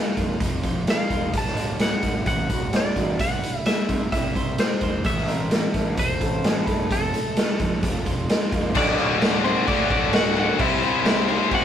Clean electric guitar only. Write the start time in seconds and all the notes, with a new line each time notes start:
Already playing: F5
0.90 F5
1.38 A5
1.81 F#5
2.27 F#5
2.76 D5
3.21 F#5
3.67 E5
4.12 E5
4.60 C5
5.06 E5
5.99 C5
6.63 B4
6.92 A4
8.77 D4 D5
9.44 C4 C5
9.67 D4 D5
9.90 D4 D5
10.14 F#4 F#5
10.39 F#4 F#5
10.60 E4 E5
11.06 E4 E5
11.54 F#4 F#5